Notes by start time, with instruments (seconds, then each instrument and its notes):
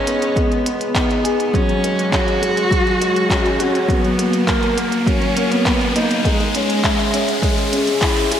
Already playing: felt piano G#3 B3 D#5, cello C#4, riser
0.07 felt piano B3, closed hi-hat
0.22 closed hi-hat
0.36 felt piano G#3, cello B3, kick, closed hi-hat
0.52 closed hi-hat
0.65 felt piano B3, closed hi-hat
0.81 closed hi-hat
0.95 cello B3, felt piano D#4, kick, clap, closed hi-hat
1.11 closed hi-hat
1.24 felt piano G#4, closed hi-hat
1.40 closed hi-hat
1.54 felt piano F#3, cello C#4, kick, closed hi-hat
1.69 closed hi-hat
1.83 felt piano G#3, closed hi-hat
1.99 closed hi-hat
2.12 cello F#4, felt piano C#5, kick, clap, closed hi-hat
2.28 closed hi-hat
2.41 felt piano G#3, closed hi-hat
2.57 closed hi-hat
2.71 felt piano F#3, kick, closed hi-hat
2.87 closed hi-hat
3.00 felt piano G#3, closed hi-hat
3.16 closed hi-hat
3.30 felt piano C#4, kick, clap, closed hi-hat
3.46 closed hi-hat
3.59 cello C#4, felt piano F#4, closed hi-hat
3.75 closed hi-hat
3.88 felt piano F#3, cello B3, kick, closed hi-hat
4.05 closed hi-hat
4.18 felt piano A#3, closed hi-hat
4.33 closed hi-hat
4.47 cello A#3, felt piano A#4, kick, clap, closed hi-hat
4.63 closed hi-hat
4.77 felt piano A#3, closed hi-hat
4.92 closed hi-hat
5.07 felt piano F#3, cello C#4, kick, closed hi-hat
5.22 closed hi-hat
5.36 felt piano A#3, closed hi-hat
5.51 cello B3, closed hi-hat
5.66 felt piano B3, kick, clap, closed hi-hat
5.81 closed hi-hat
5.95 cello A#3, felt piano D#4, closed hi-hat
6.11 closed hi-hat
6.25 felt piano G#3, cello G#3, kick, closed hi-hat
6.40 closed hi-hat
6.55 felt piano C#4, closed hi-hat
6.70 closed hi-hat
6.84 felt piano E5, kick, clap, closed hi-hat
6.99 closed hi-hat
7.14 felt piano C#4, closed hi-hat
7.28 closed hi-hat
7.42 felt piano G#3, kick, closed hi-hat
7.58 closed hi-hat
7.72 felt piano C#4, closed hi-hat
7.87 closed hi-hat
8.02 felt piano E4, kick, clap, closed hi-hat
8.17 closed hi-hat
8.31 felt piano G#4, closed hi-hat